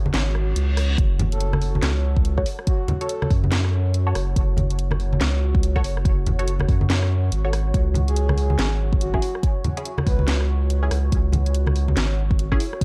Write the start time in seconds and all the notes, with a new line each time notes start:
Already playing: F#4 C#5
0.06 high conga
0.14 G#1, snare, clap, closed hi-hat, reverse cymbal
0.35 cross-stick
0.56 C#2, closed hi-hat
0.77 cross-stick, open hi-hat
0.98 F#1 F#4 C#5, kick, closed hi-hat
1.19 closed hi-hat, high conga, low conga
1.32 A4, closed hi-hat
1.41 closed hi-hat
1.53 cross-stick, high conga
1.62 open hi-hat
1.75 high conga
1.82 C#2, snare, clap, closed hi-hat
2.17 kick
2.25 closed hi-hat
2.37 F#4 A4 C#5, kick, cross-stick
2.46 open hi-hat
2.59 cross-stick
2.67 F#4, kick, closed hi-hat
2.88 closed hi-hat, high conga, low conga
3.01 F#4 A4 C#5, closed hi-hat
3.09 closed hi-hat
3.22 cross-stick, high conga
3.30 F#2, kick, open hi-hat
3.44 high conga
3.52 snare, clap, closed hi-hat
3.65 cross-stick
3.94 closed hi-hat
4.07 F#4 A4 C#5
4.15 F#1, cross-stick, open hi-hat
4.36 F#1, kick, closed hi-hat
4.57 closed hi-hat, high conga, low conga
4.70 closed hi-hat
4.79 closed hi-hat
4.91 cross-stick, high conga
5.00 open hi-hat
5.13 high conga
5.20 C#2, snare, clap, closed hi-hat
5.55 kick
5.63 closed hi-hat
5.76 F#4 A4 C#5, kick, cross-stick
5.84 F#1, open hi-hat
5.97 cross-stick
6.05 kick, closed hi-hat
6.26 closed hi-hat, high conga, low conga
6.39 F#4 A4 C#5, closed hi-hat
6.48 closed hi-hat
6.60 cross-stick, high conga
6.68 F#2, kick, open hi-hat
6.81 high conga
6.90 snare, clap, closed hi-hat
7.03 cross-stick
7.32 G#1, closed hi-hat
7.45 F#4 A4 C#5
7.53 cross-stick, open hi-hat
7.74 C#2, kick, closed hi-hat
7.94 closed hi-hat, high conga, low conga
8.08 G#4, closed hi-hat
8.16 closed hi-hat
8.29 cross-stick, high conga
8.37 G#4, open hi-hat
8.50 high conga
8.59 G#1, snare, clap, closed hi-hat
8.93 kick
9.01 F#4, closed hi-hat
9.14 C#4 E4 G#4, kick, cross-stick
9.22 open hi-hat
9.35 cross-stick
9.43 kick, closed hi-hat
9.64 closed hi-hat, high conga, low conga
9.77 C#4 E4 G#4, closed hi-hat
9.85 closed hi-hat
9.98 cross-stick, high conga
10.07 C#2 B4, kick, open hi-hat
10.19 high conga
10.28 snare, clap, closed hi-hat
10.41 cross-stick
10.70 closed hi-hat
10.83 C#4 E4 G#4
10.91 C#2, cross-stick, open hi-hat
11.12 C#2, kick, closed hi-hat
11.32 closed hi-hat, high conga, low conga
11.46 closed hi-hat
11.54 closed hi-hat
11.66 cross-stick, high conga
11.76 open hi-hat
11.88 high conga
11.97 G#1, snare, clap, closed hi-hat
12.31 kick
12.39 closed hi-hat
12.52 C#4 E4 G#4, kick, cross-stick
12.60 open hi-hat
12.73 cross-stick
12.81 kick, closed hi-hat